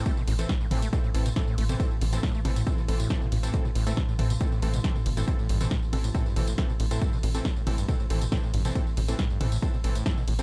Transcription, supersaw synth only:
X:1
M:4/4
L:1/16
Q:1/4=138
K:Am
V:1 name="Supersaw synth"
[E,CA] z2 [E,CA] z2 [E,CA] z [E,CA] z [E,CA] z [E,CA] z2 [E,CA] | [E,CA] z2 [E,CA] z2 [E,CA] z [E,CA] z [E,CA] z [E,CA] z2 [E,CA] | [E,CA] z2 [E,CA] z2 [E,CA] z [E,CA] z [E,CA] z [E,CA] z2 [E,CA] | [E,CA] z2 [E,CA] z2 [E,CA] z [E,CA] z [E,CA] z [E,CA] z2 [E,CA] |
[E,CA] z2 [E,CA] z2 [E,CA] z [E,CA] z [E,CA] z [E,CA] z2 [E,CA] | [E,CA] z2 [E,CA] z2 [E,CA] z [E,CA] z [E,CA] z [E,CA] z2 [E,CA] |]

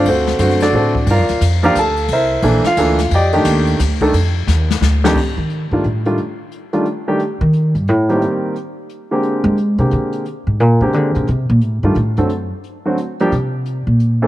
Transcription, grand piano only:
X:1
M:3/4
L:1/8
Q:"Swing" 1/4=176
K:Fmix
V:1 name="Grand piano"
[C^FAc]3 [DFAd]3 | [FBdf]2 z [FBdf] [Aa]2 | [=EBc=e]3 [Ff]3 | [Gdeg]2 z4 |
z6 | z6 | z6 | z6 |
z6 | z6 | z6 | z6 |
z6 | z6 |]
V:2 name="Grand piano"
z2 [D,A,C^F] z [D,A,CA] z | z3 [F,B,DG] z2 | z2 [=E,B,DA] z [E,B,DA] z | z [E,A,DG]3 z [E,A,DA] |
z4 z [F,,E,A,DG] | z3 [E,G,A,DF] z [E,G,A,DF] | z3 [E,G,A,DF] z [E,G,A,DG] | z4 z [E,G,B,CG]- |
[E,G,B,CG]2 z3 [D,_A,B,CG]- | [D,_A,B,CG]2 z [D,A,B,CG]3 | z3 [D,_A,B,CG]3 | z3 [E,G,A,DF] z [D,_G,A,CA] |
z3 [D,^F,A,C^F] z [=F,G,B,DG] | z4 z [=E,B,CDA] |]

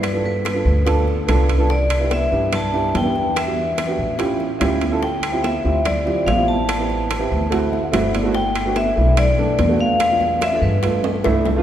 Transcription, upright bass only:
X:1
M:4/4
L:1/8
Q:1/4=144
K:Gmix
V:1 name="Upright bass" clef=bass
G,,3 D,,3 C,,2- | C,,3 G,,3 E,,2- | E,,3 A,,,3 D,,2- | D,,3 D,,3 A,,,2- |
A,,,3 D,,3 G,,,2- | G,,,3 B,,,3 E,,2- | E,,3 G,,3 C,,2 |]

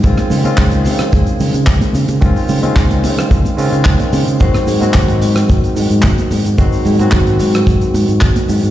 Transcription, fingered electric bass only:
X:1
M:4/4
L:1/16
Q:1/4=110
K:Abmix
V:1 name="Fingered electric bass" clef=bass
D,, z D, z D,,2 D, z D,, z D, D, D,, z D, D, | D,, z D, z D,,2 D, z D,, z D, D, D,, z D, D, | A,,, z A,, z A,,,2 A,, z A,,, z A,, A,, A,,, z A,, A,, | A,,, z A,, z A,,,2 A,, z A,,, z A,, A,, A,,, z A,, A,, |]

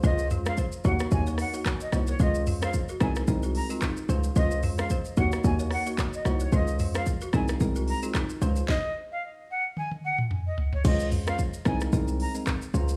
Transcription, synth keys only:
X:1
M:4/4
L:1/16
Q:"Swing 16ths" 1/4=111
K:Db
V:1 name="Synth keys"
[A,DFc]3 [A,DFc] z2 [B,EGd]2 [B,EGd]3 [B,EGd] z2 [B,EGd]2 | [A,DFc]3 [A,DFc] z2 [A,CEB]2 [A,CEB]3 [A,CEB] z2 [A,DFc]2 | [A,DFc]3 [A,DFc] z2 [B,EGd]2 [B,EGd]3 [B,EGd] z2 [B,EGd]2 | [A,DFc]3 [A,DFc] z2 [A,CEB]2 [A,CEB]3 [A,CEB] z2 [A,DFc]2 |
z16 | [A,DFc]3 [A,DFc] z2 [A,CEB]2 [A,CEB]3 [A,CEB] z2 [A,DFc]2 |]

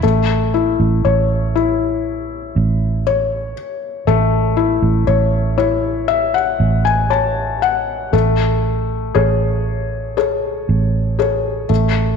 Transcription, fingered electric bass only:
X:1
M:4/4
L:1/16
Q:1/4=59
K:A
V:1 name="Fingered electric bass" clef=bass
A,,,3 A,,, A,,,6 A,,,4 z2 | A,,,3 A,,, A,,,6 A,,,6 | A,,,4 A,,,6 A,,,4 A,,,2 |]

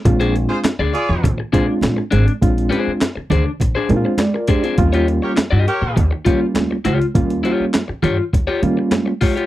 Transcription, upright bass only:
X:1
M:4/4
L:1/16
Q:1/4=102
K:Bbmix
V:1 name="Upright bass" clef=bass
B,,,3 z2 D,, z F,, B,,, z B,, z B,,, z A,,, z | B,,,2 z4 D,, z B,,, z B,, z4 z | E,,3 z2 G,, z B,, E,, z E, z E,, z _D,, z | E,,2 z4 G,, z E,, z E, z4 z |]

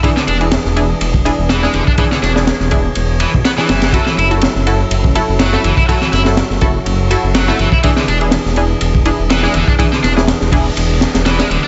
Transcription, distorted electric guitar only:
X:1
M:4/4
L:1/16
Q:"Swing 16ths" 1/4=123
K:Emix
V:1 name="Distorted electric guitar" clef=bass
E, D, D z8 z E, G, D, D | E, D, D z6 z E, z B, E, E, E, | F, E, E z8 z F, A, E, E | F, E, E z8 z F, A, E, E |
E, D, D z8 z E, G, D, D | E, D, D z8 z E, G, D, D |]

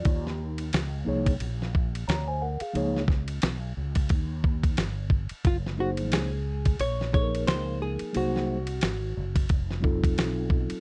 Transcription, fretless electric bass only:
X:1
M:4/4
L:1/16
Q:"Swing 16ths" 1/4=89
K:Gblyd
V:1 name="Fretless electric bass" clef=bass
E,,4 D,,2 C,,2 B,,,4 =D,,3 z | D,,4 _C,,2 D,,2 E,,4 =G,,,3 z | G,,,4 D,,4 B,,,4 D,,3 z | C,,4 A,,,2 G,,,2 F,,,4 _C,,3 z |]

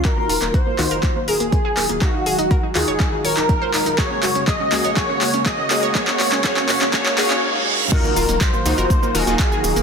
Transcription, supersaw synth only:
X:1
M:4/4
L:1/16
Q:1/4=122
K:Ebdor
V:1 name="Supersaw synth"
[E,EFG]6 [E,EFG]8- [E,EFG]2 | [E,EGf]6 [E,EFG]8- [E,EFG]2 | [B,GA]6 [B,GA]2 [B,GA]6 [B,GA]2 | [B,GA]4 [B,GA]4 [B,GA]2 [B,GA]2 z4 |
[E,EFG]6 [E,EFG]4 [E,EFG] [E,EFG] F4 |]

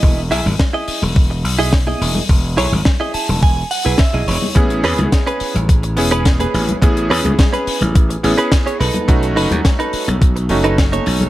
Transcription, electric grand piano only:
X:1
M:4/4
L:1/8
Q:1/4=106
K:E
V:1 name="Electric grand piano"
z8 | z8 | [B,CEG]4- [B,CEG] [B,CEG]3 | [B,CEG]4- [B,CEG] [B,CEG]2 z |
[A,CDF]4- [A,CDF] [A,CDF]3 |]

